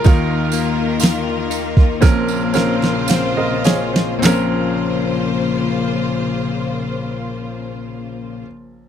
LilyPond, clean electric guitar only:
\new Staff \with { instrumentName = "Clean electric guitar" } { \time 4/4 \key bes \minor \tempo 4 = 51 ees8 bes8 f'8 ees'8 bes,8 f'8 c'8 f'8 | <bes, f c' des' f'>1 | }